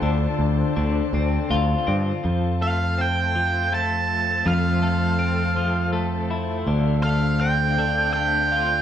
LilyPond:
<<
  \new Staff \with { instrumentName = "Lead electric guitar" } { \time 3/4 \key f \major \tempo 4 = 81 r2. | r8 f''8 g''4 a''4 | f''2 r4 | r8 f''8 g''4 g''4 | }
  \new Staff \with { instrumentName = "String section" } { \time 3/4 \key f \major << { <d' a''>2. | <c' a''>2.~ | <c' a''>2. | <d' f''>2. | } \\ { <a' c''>2. | <a' c''>2.~ | <a' c''>2.~ | <a' c''>2. | } >> }
  \new Staff \with { instrumentName = "Clean electric guitar" } { \time 3/4 \key f \major <d c' f'>4 d8 c'8 f'8 c'8 | f8 a8 c'8 f8 a4 | f8 a8 c'8 f8 a8 e'8 | d8 a8 c'8 d8 a8 f'8 | }
  \new Staff \with { instrumentName = "Picked electric bass" } { \clef bass \time 3/4 \key f \major d,8 d,8 d,8 d,8 d,8 g,8 | f,2. | f,2. | d,2. | }
>>